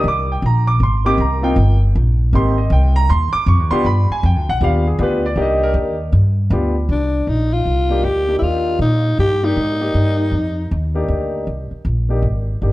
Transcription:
0.04 C2
0.08 D6
0.32 G5
0.42 A#1 A#5
0.67 D6
0.80 G#1 C6
1.05 A#3 C4 D#4 G4 D6
1.18 C2 A#5
1.41 A#3 C4 D#4 F4 G5
1.56 G1
1.96 A#1
2.33 G#1 A#3 C4 D#4 G4 C6
2.58 D#5
2.70 C2 G5
2.96 A#5
3.09 D#2 C6
3.33 D6, muted upright bass stroke
3.46 F2 C#6
3.59 D#2
3.71 C2 B3 D4 F4 G4 C6
3.84 G2 B5
4.10 G#5, muted upright bass stroke
4.23 F2 G5
4.36 D2
4.49 B1 F#5
4.61 D#2 B3 D4 F4 G4 F5
4.87 G#4
4.99 D2 B3 D4 F4 G4
5.03 B4
5.26 D5
5.36 C2 A#3 D4 D#4 G4
5.42 D#5
5.63 A#4
5.74 D#2
6.12 G2
6.50 D2 B3 D4 F4 G4
6.89 C2 D4
7.27 A#1 D#4
7.53 F4
7.66 C2
7.90 A#3 D4 D#4 G4
8.04 D2 G4
8.27 A#3 D4 D#4 G4
8.38 D#2 E4
8.43 F4
8.79 A#2 D#4
9.18 G2 G4
9.43 A#3 D4 D#4 G4
9.56 G#2
9.80 A#3 D#4 G4 D5
9.94 G2
10.32 F2
10.71 D#2
10.95 A#3 D4 D#4 G4
11.08 D2
11.47 C2
11.71 muted upright bass stroke
11.85 A#1
12.09 A#3 D4 D#4 G4
12.22 G#1
12.62 G1 A#3 D4 D#4 G4

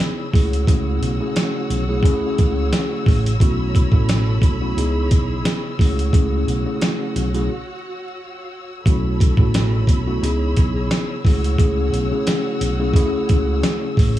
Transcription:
Already playing: C#3 B3 D#4 E4 G#4 C#5 B5 E6
0.00 snare, closed hi-hat
0.33 C#2 C#3 A3 C#4 E4 F#4 G#4 F#5, kick, open hi-hat
0.53 closed hi-hat
0.67 C#2 C#3 A3 C#4 E4 G#4, kick, closed hi-hat
1.02 B1, closed hi-hat
1.20 C#3 A3 C#4 E4 G#4
1.36 snare, closed hi-hat
1.70 B1, closed hi-hat
1.88 C#3 A3 C#4 E4 G#4
2.03 C#3 A3 C#4 E4 G#4, kick, closed hi-hat
2.38 C#2, kick, closed hi-hat
2.73 snare, closed hi-hat
3.06 A1, kick, open hi-hat
3.26 closed hi-hat
3.40 B1 B2 A3 C#4 E4 F#4 A4 B5, kick, closed hi-hat
3.75 kick, closed hi-hat
3.92 A1 B2 A3 C#4 E4 F#4, kick
4.09 snare, closed hi-hat
4.42 B1, kick, closed hi-hat
4.61 B2 A3 C#4 E4 F#4
4.76 C#2 C#3 B3 D#4 E4 G#4, closed hi-hat
5.11 B1, kick, closed hi-hat
5.45 snare, closed hi-hat
5.78 C#2 C#3 A3 C#4 E4 F#4 G#4 F#5, kick, open hi-hat
5.99 closed hi-hat
6.13 C#2 C#3 A3 C#4 E4 G#4, kick, closed hi-hat
6.47 B1, closed hi-hat
6.66 C#3 A3 C#4 E4 G#4
6.82 snare, closed hi-hat
7.15 B1, closed hi-hat
7.34 C#3 A3 C#4 E4 G#4, closed hi-hat
8.86 B1 B2 A3 C#4 E4 F#4 A4 C#5 B5 E6, kick, closed hi-hat
9.20 kick, closed hi-hat
9.37 A1 B2 A3 C#4 E4 F#4, kick
9.54 snare, closed hi-hat
9.87 B1, kick, closed hi-hat
10.06 B2 A3 C#4 E4 F#4
10.22 C#2 C#3 B3 D#4 E4 G#4, closed hi-hat
10.57 B1, kick, closed hi-hat
10.91 snare, closed hi-hat
11.24 C#2 C#3 A3 C#4 E4 F#4 G#4 F#5, kick, open hi-hat
11.44 closed hi-hat
11.58 C#2 C#3 A3 C#4 E4 G#4, kick, closed hi-hat
11.93 B1, closed hi-hat
12.11 C#3 A3 C#4 E4 G#4
12.27 snare, closed hi-hat
12.61 B1, closed hi-hat
12.79 C#3 A3 C#4 E4 G#4
12.94 C#3 A3 C#4 E4 G#4, kick, closed hi-hat
13.29 C#2, kick, closed hi-hat
13.63 snare, closed hi-hat
13.97 A1, kick, open hi-hat

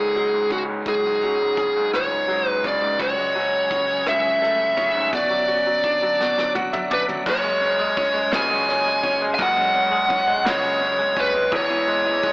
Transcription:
Already playing: C#2 C#3 F#3 C#4 G#4
0.00 G#2
0.15 F#3 G#3, closed hi-hat
0.34 G#2
0.50 C#3 C#4 F#4, kick, closed hi-hat
0.69 G#2
0.86 C#2 F#3 G#4, kick, closed hi-hat
1.06 G#2
1.21 F#3 C#4, closed hi-hat
1.41 G#2
1.57 C#3 G#4, kick, closed hi-hat
1.76 G#2
1.93 C#2 C#4 C#5, cross-stick, closed hi-hat
2.11 G#2
2.28 F#3 G#3, closed hi-hat
2.46 G#2 B4
2.64 C#3 D5, kick, closed hi-hat
2.81 G#2
2.99 C#2 C#3 F#3 C#4 C#5 G#5, kick, closed hi-hat
3.18 G#3
3.35 F#3 C#4, closed hi-hat
3.70 C#3 F#4, kick, closed hi-hat
3.88 G#4
4.06 C#2 C#4 E5, cross-stick, closed hi-hat
4.42 A3 A4, cross-stick, closed hi-hat
4.77 C#3 C#4, kick, closed hi-hat
4.95 G#2
5.13 B2 D3 F#3 B3 F#4 D5, kick, closed hi-hat
5.30 F#3
5.48 C#4 F#4, closed hi-hat
5.67 F#3
5.84 D4, kick, closed hi-hat
6.02 F#3
6.20 B2, snare
6.38 F#3, snare
6.55 F#3 F#4 F#5, high tom
6.73 F#3 E5, mid tom
6.90 C#4 D4 B4 D5, mid tom
7.08 F#3, floor tom
7.26 F#1 F#2 F#3 G#4 C#5, kick, crash
7.44 G#3 C#4
7.61 G#3 C#4, ride
7.79 G#3 G#4
7.97 C#4, kick, ride
8.14 G#3
8.32 C#2 C#3 F#3 G#4, snare, ride
8.36 G#5
8.50 G#3 C#4
8.67 G#3 C#4, snare, ride
8.84 G#3 G#4
9.03 C#4, kick, ride
9.21 G#3
9.35 F#1 F#3 G#5
9.39 F#2 G#4 F#5, kick, ride
9.56 G#3 C#4
9.74 G#3 C#4, ride
9.92 G#3 G#4
10.09 C#4, kick, ride
10.27 G#3
10.45 C#2 C#3 F#3 G#4 C#5, snare, ride
10.63 G#3 C#4
10.80 G#3 C#4, ride
10.99 G#3 G#4
11.16 C#4 B4, kick, ride
11.34 G#3
11.51 E1 E2 E3 G#4, kick, ride
11.56 C#5
11.70 E3 C#4
11.87 G#3 B3, ride
12.05 E3 G#4
12.23 G#3 C#4, kick, ride

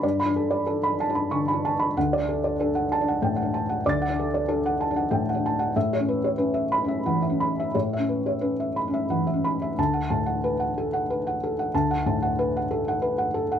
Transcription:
Already playing: B5
0.03 G2 D5
0.20 B5
0.25 D4
0.36 A4
0.51 D5
0.66 D4 A4
0.83 B5
1.00 A5
1.09 D4
1.15 B5
1.31 D3 C#6
1.48 B5
1.53 D4
1.65 A5
1.79 B5
1.97 D2 F#5
2.13 D5
2.18 D4
2.29 A4
2.44 D5
2.59 D4 A4
2.75 F#5
2.92 A5
3.01 D4
3.08 F#5
3.22 A2 G5
3.36 F#5
3.43 D4
3.54 A5
3.69 F#5
3.86 D2 D5 D6 A6
4.02 F#5
4.09 D4
4.19 A4
4.34 D5
4.48 D4 A4
4.66 F#5
4.81 A5
4.91 D4
4.96 F#5
5.11 A2 G5
5.29 F#5
5.34 D4
5.46 A5
5.59 F#5
5.76 A2 E5
5.93 C#5
5.99 C#4
6.08 B4
6.24 C#5
6.38 C#4 B4
6.54 E5
6.72 B5
6.84 C#4 E5
7.06 E3 F#5
7.22 E5
7.30 C#4
7.40 B5
7.60 E5
7.75 A2 C#5
7.93 E5
7.98 C#4
8.09 B4
8.26 C#5
8.41 C#4 B4
8.60 E5
8.76 B5
8.88 C#4
8.94 E5
9.10 E3 F#5
9.27 E5
9.33 C#4
9.44 B5
9.62 E5
9.78 D2 A5
9.93 F#5
10.10 A2 A5
10.26 F#5
10.44 B4
10.60 F#5
10.78 A4
10.93 F#5
11.10 B4
11.27 F#5
11.43 A4
11.59 F#5
11.74 D2 A5
11.91 F#5
12.06 A2 A5
12.22 F#5
12.39 B4
12.56 F#5
12.71 A4
12.88 F#5
13.02 B4
13.18 F#5
13.34 A4
13.52 F#5

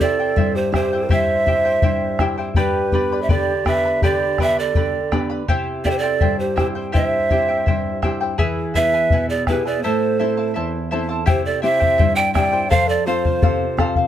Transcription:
Already playing: C3
0.00 C4 E4 G4 A4 C5 D5 E5 G5, bombo low
0.19 E4 C5 G5
0.36 G2 E4 C5 E5 G5, bombo low
0.55 G4 C5
0.72 C4 E4 G4 C5 E5 G5, bombo rim, bombo low
0.93 E4 C5 G5
1.09 G2 E4 G4 C5 E5 G5, bombo low
1.46 C4 E4 G4 C5 E5 G5, bombo low
1.65 E4 C5 G5
1.82 G2 E4 C5 E5 G5, bombo low
2.19 C4 E4 G4 C5 E5 G5, bombo rim, bombo low
2.38 E4 C5 G5
2.55 G2 G4 B4 D5 G5 B5, bombo low
2.92 B3 D4 G4 B4 D5 G5 B5, bombo low
3.12 B4 D5 B5
3.22 C5 E5
3.29 D3 G4 B4 D5 G5 B5, bombo low
3.65 B3 D4 G4 B4 D5 E5 G5 B5, bombo rim, bombo low
3.85 B4 D5 B5
4.02 D3 G4 B4 D5 G5 B5, bombo low
4.38 B3 D4 G4 B4 D5 E5 G5 B5, bombo rim, bombo low
4.57 A4 B4 D5 B5
4.75 D3 B4 D5 G5 B5, bombo low
5.12 B3 D4 G4 B4 D5 G5 B5, bombo rim, bombo low
5.30 B4 D5 B5
5.48 C3 E4 G4 C5 E5 G5, bombo low
5.84 C4 E4 G4 A4 C5 D5 E5 G5, bombo low
5.91 G4 C5
5.98 A4 D5
6.03 E4 C5 G5
6.21 G2 E4 C5 E5 G5, bombo low
6.39 G4 C5
6.56 C4 E4 G4 C5 E5 G5, bombo rim, bombo low
6.75 E4 C5 G5
6.92 G2 E4 G4 C5 E5 G5, bombo low
7.30 C4 E4 G4 C5 E5 G5, bombo low
7.48 E4 C5 G5
7.66 G2 E4 C5 E5 G5, bombo low
8.02 C4 E4 G4 C5 E5 G5, bombo rim, bombo low
8.21 E4 C5 G5
8.38 E3 E4 G#4 B4 E5 G#5, bombo low
8.74 B3 E4 G#4 B4 E5 G#5, bombo low
8.94 E4 B4 G#5
9.10 B2 E4 B4 E5 G#5, bombo low
9.29 G#4 D5
9.47 B3 E4 G4 G#4 B4 E5 G#5, bombo rim, bombo low
9.65 E4 G#4 B4 D5 G#5
9.83 A2 E4 A4 C5 E5 A5
10.19 C4 E4 A4 C5 E5 A5
10.37 E4 C5 A5
10.54 E2 E4 C5 E5 A5
10.91 C4 E4 A4 C5 E5 A5
11.09 E4 C5 A5
11.26 C3 E4 G4 C5 E5 G5, bombo low
11.45 A4 D5
11.62 C4 E4 G4 C5 E5 G5
11.79 E4 C5 G5, bombo low
11.98 G2 E4 C5 E5 G5, bombo low
12.16 D5 G5
12.34 C4 E4 G4 C5 D5 E5 G5, bombo rim, bombo low
12.52 E4 C5 G5
12.70 F2 A4 C5 F5, bombo low
12.87 A4 D5
13.06 C4 F4 A4 C5 F5
13.25 C5 F5, bombo low
13.42 C3 A4 C5 F5, bombo low
13.77 C4 F4 A4 C5 F5, bombo rim, bombo low
13.96 C5 F5, bombo low

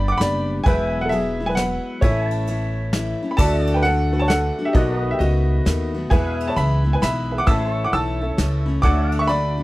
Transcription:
Already playing: G1 G3 B3 D4 G4 B4 D5 G5 B5
0.08 F#5 D6
0.18 F#1 G3 B3 B5, snare, ride
0.22 D4 G4 D5
0.64 E1 E2 B2 F#3 G#3 G#4 B4 E5 G#5, kick, ride
0.68 B3 E4 B4 G5
0.88 G#5
1.01 F#5
1.05 A4 E5
1.11 F#3 G#3 B3 E4 G#4, ride
1.40 F#3 G#3 B3 E4
1.46 B4 G#5
1.55 F#3 G#3 B3 B4 F#5, snare, ride
1.60 E4
2.01 A1 A2 E3 A3 C#4 E4 A4 C#5 E5 G#5, kick, ride
2.24 A5
2.31 ride
2.47 E3 A3 C#4 E4, ride
2.93 E3 A3 C#4 E4, snare, ride
3.23 A3 C#4 E4
3.31 B5
3.37 D2 D3 A3 D4 F#4 A4 D5 E5 F#5 A5, kick, crash
3.41 F#4
3.65 D5, ride
3.74 B4 G5
3.83 D3 A3 D4 A4 F#5, ride
3.87 F#4
4.13 A3 D4 F#4 A4 B4
4.19 C#5 A5
4.28 D3 A3 D4 A4 F#5, snare, ride
4.32 F#4
4.59 A3 D4 F#4
4.65 G4 E5
4.73 B1 B2 D#3 A3 B3 F#4 A4 B4 D5 D#5, kick, ride
4.78 F#4 F#5
4.97 B4 D#5
5.11 G4 E5
5.19 C#2 D#3 A3 B3 F#4 D#5, ride
5.23 F#4
5.65 D#2 D#3 A3 B3 F#4, snare, ride
5.94 A3 B3 F#4
6.10 E2 B2 E3 G#3 B3 G#4 B4 E5 F#5 G#5, kick, ride
6.14 E4
6.38 E5, ride
6.47 C#5 A5
6.56 C#2 E3 G#3 B3 E4 E5 B5, ride
6.84 E3 G#3 B3 E4
6.93 B4 G#5
7.01 B1 E3 G#3 B3 E4 E5 B5, snare, ride
7.32 G#4 B4 E5
7.38 F#5 D6
7.46 A1 A2 E3 A3 C#4 E4 G#4 A4 B4 C#5 E5 A5 E6, kick, ride
7.67 A4
7.73 C#5
7.84 F#5 D6
7.92 B1 E3 A3 C#4 E4 A5 E6, ride
8.21 A3 C#4 E4 A4 C#5 E5
8.38 C#2 E3 A3 C#4 E4, snare, ride
8.66 A3 C#4 E4
8.82 D2 D3 A3 D4 F#4 A4 C#5 D5 F#5 D6, kick, ride
8.86 F#4 E5
9.05 D5
9.12 F#5, ride
9.19 E5 C#6
9.27 D3 A3 D5 B5, ride
9.32 D4 F#4
9.58 D4 F#4

